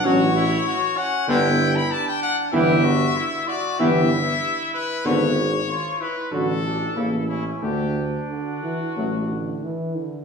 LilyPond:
<<
  \new Staff \with { instrumentName = "Trumpet" } { \time 4/4 \key d \major \tempo 4 = 94 cis''4. fis''8 g''8. b''16 a''16 g''16 fis''8 | e''4. d''8 e''4. b'8 | cis''4. b'8 a'4. e'8 | g'8. r16 fis'2 r4 | }
  \new Staff \with { instrumentName = "Trumpet" } { \time 4/4 \key d \major fis'8 e'8 fis'8 cis'8 e'4 d'4 | g'8 fis'8 e'8 fis'8 g'8 e'4.~ | e'8 r8 f'8 e'8 fis'8 d'8 e'8 cis'8 | d'2.~ d'8 r8 | }
  \new Staff \with { instrumentName = "French horn" } { \time 4/4 \key d \major cis'8 r4. b8 r4. | b8 r4. b8 r4. | b8 r4. fis8 r8 bes8 r8 | a8 r4. a8 r4. | }
  \new Staff \with { instrumentName = "Trombone" } { \clef bass \time 4/4 \key d \major fis8 r4. d8 r4. | e8 r4. e8 r4. | d8 r4. d8 r8 cis8 r8 | d8 r8 d8 e8 fis8 d8 e8 d8 | }
  \new Staff \with { instrumentName = "Tuba" } { \clef bass \time 4/4 \key d \major a,,4 r4 g,,4 r4 | g,,4 r4 g,,4 r4 | gis,,4 r4 a,,4 a,,4 | d,4 r4 a,,4 r4 | }
>>